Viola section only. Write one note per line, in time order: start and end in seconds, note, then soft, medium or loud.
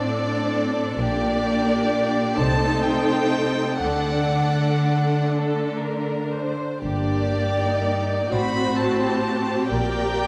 0.00 0.95 C4 soft
0.00 0.95 D4 soft
0.97 2.37 A#3 soft
0.97 2.34 D4 soft
2.37 3.81 A3 soft
2.37 3.81 D#4 soft
3.83 6.59 A3 soft
3.83 6.59 D4 soft
6.84 8.27 A#3 soft
6.84 7.55 D4 soft
7.60 8.30 D#4 soft
8.32 9.70 C4 soft
8.32 9.71 F#4 soft
9.70 10.27 A#3 soft
9.70 10.27 G4 soft